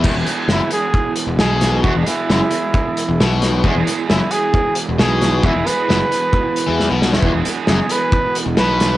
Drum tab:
CC |x---------------|----------------|----------------|----------------|
HH |--x---x---x---x-|--x---x---x---x-|--x---x---x---x-|--x---x---x-----|
SD |----o-------o-o-|----o-------o-o-|----o-------o-o-|----o-------o-oo|
BD |o-------o-------|o-------o-------|o-------o-------|o-------o-------|

CC |----------------|
HH |--x---x---x---x-|
SD |----o-------o-o-|
BD |o-------o-------|